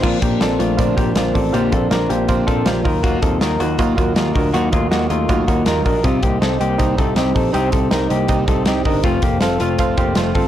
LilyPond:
<<
  \new Staff \with { instrumentName = "Reed electric piano" } { \time 4/4 \key bes \major \tempo 4 = 160 <f' bes' c'' d''>8 <f' bes' c'' d''>8 <f' bes' c'' d''>8 <f' bes' c'' d''>8 <f' bes' c'' d''>8 <f' bes' c'' d''>8 <f' bes' c'' d''>8 <f' bes' c'' d''>8 | <f' bes' c'' d''>8 <f' bes' c'' d''>8 <f' bes' c'' d''>8 <f' bes' c'' f''>8 <f' bes' c'' d''>8 <f' bes' c'' d''>8 <f' bes' c'' d''>8 <f' ges' bes' ees''>8~ | <f' ges' bes' ees''>8 <f' ges' bes' ees''>8 <f' ges' bes' ees''>8 <f' ges' bes' ees''>8 <f' ges' bes' ees''>8 <f' ges' bes' ees''>8 <f' ges' bes' ees''>8 <f' ges' bes' ees''>8 | <f' ges' bes' ees''>8 <f' ges' bes' ees''>8 <f' ges' bes' ees''>8 <f' ges' bes' ees''>8 <f' ges' bes' ees''>8 <f' ges' bes' ees''>8 <f' ges' bes' ees''>8 <f' ges' bes' ees''>8 |
<ees' g' c'' ees''>8 <ees' g' c'' ees''>8 <ees' g' c'' ees''>8 <ees' g' c'' ees''>8 <ees' g' c'' ees''>8 <ees' g' c'' ees''>8 <ees' g' c'' ees''>8 <ees' g' c'' ees''>8 | <ees' g' c'' ees''>8 <ees' g' c'' ees''>8 <ees' g' c'' ees''>8 <ees' g' c'' ees''>8 <ees' g' c'' ees''>8 <ees' g' c'' ees''>8 <ees' g' c'' ees''>8 <ees' g' c'' ees''>8 | <f' a' c'' f''>8 <f' a' c'' f''>8 <f' a' c'' f''>8 <f' a' c'' f''>8 <f' a' c'' f''>8 <f' a' c'' f''>8 <f' a' c'' f''>8 <f' a' c'' f''>8 | }
  \new Staff \with { instrumentName = "Clean electric guitar" } { \time 4/4 \key bes \major <bes f'>8 <bes g'>8 <c' a'>8 <a f'>4 <bes g'>8 <bes f'>8 <c' a'>8 | <bes g'>8 <c' a'>8 <d' bes'>8 <bes g'>4 <c' a'>8 <bes g'>8 <ees' bes'>8 | <bes ges'>8 <c' a'>8 <ees' bes'>8 <bes ges'>4 <bes ges'>8 <bes f'>8 <d' bes'>8 | <bes ges'>8 <a f'>8 <bes ges'>8 <a f'>4 <bes ges'>8 <ees' bes'>8 <d' bes'>8 |
<c' f'>8 <bes g'>8 <c' a'>8 <bes g'>4 <c' a'>8 <c' g'>8 <c' a'>8 | <c' g'>8 <c' a'>8 <ees' bes'>8 <bes g'>4 <c' a'>8 <c' g'>8 <d' bes'>8 | <a f'>8 <bes g'>8 <c' a'>8 <a f'>4 <bes g'>8 <a f'>8 <c' a'>8 | }
  \new Staff \with { instrumentName = "Twelve-string acoustic guitar" } { \time 4/4 \key bes \major <bes, d f c' d'>8 <f c' d'>8 <d f c' d'>8 <f c' d'>8 <bes, d f c' d'>8 <f c' d'>8 <d f c' d'>8 <f c' d'>8 | <bes, d f c' d'>8 <f c' d'>8 <d f c' d'>8 <f c' d'>8 <bes, d f c' d'>8 <f c' d'>8 <d f c' d'>8 <ges bes f'>8 | <ees ges bes f'>8 <ges bes f'>8 <ees ges bes f'>8 <ges bes f'>8 <ees ges bes f'>8 <ges bes f'>8 <ees ges bes f'>8 <ges bes f'>8 | <ees ges bes f'>8 <ges bes f'>8 <ees ges bes f'>8 <ges bes f'>8 <ees ges bes f'>8 <ges bes f'>8 <ees ges bes f'>8 <ges bes f'>8 |
<c g c' ees'>8 <g c' ees'>8 <c g c' ees'>8 <g c' ees'>8 <c g c' ees'>8 <g c' ees'>8 <c g c' ees'>8 <g c' ees'>8 | <c g c' ees'>8 <g c' ees'>8 <c g c' ees'>8 <g c' ees'>8 <c g c' ees'>8 <g c' ees'>8 <c g c' ees'>8 <g c' ees'>8 | <f, c f a c'>8 <f a c'>8 <c f a c'>8 <f a c'>8 <f, c f a c'>8 <f c'>8 <c f a c'>8 <f a c'>8 | }
  \new Staff \with { instrumentName = "Picked electric bass" } { \clef bass \time 4/4 \key bes \major bes,,8 bes,,8 bes,,8 bes,,8 bes,,8 bes,,8 bes,,8 a,,8 | bes,,8 bes,,8 bes,,8 bes,,8 bes,,8 bes,,8 bes,,8 ees,8~ | ees,8 ees,8 ees,8 ees,8 ees,8 ees,8 ees,8 d,8 | ees,8 ees,8 ees,8 ees,8 ees,8 ees,8 ees,8 bes,,8 |
c,8 c,8 c,8 c,8 c,8 c,8 c,8 bes,,8 | c,8 c,8 c,8 c,8 c,8 c,8 c,8 g,,8 | f,,8 f,,8 f,,8 f,,8 f,,8 f,,8 f,,8 g,,8 | }
  \new DrumStaff \with { instrumentName = "Drums" } \drummode { \time 4/4 <cymc bd>8 <hh bd>8 <hh sn>8 hh8 <hh bd>8 <hh bd>8 <hh sn>8 <hho bd>8 | hh8 <hh bd>8 <hh sn>8 hh8 <hh bd>8 <hh bd>8 <hh sn>8 <hho bd>8 | <hh bd>8 <hh bd>8 <hh sn>8 hh8 <hh bd>8 <hh bd>8 <hh sn>8 <hho bd>8 | hh8 <hh bd>8 <hh sn>8 hh8 <hh bd>8 <hh bd>8 <hh sn>8 <hho bd>8 |
<hh bd>8 <hh bd>8 <hh sn>8 hh8 <hh bd>8 <hh bd>8 <hh sn>8 <hho bd>8 | hh8 <hh bd>8 <hh sn>8 hh8 <hh bd>8 <hh bd>8 <hh sn>8 <hho bd>8 | <hh bd>8 <hh bd>8 <hh sn>8 hh8 <hh bd>8 <hh bd>8 <hh sn>8 <hho bd>8 | }
>>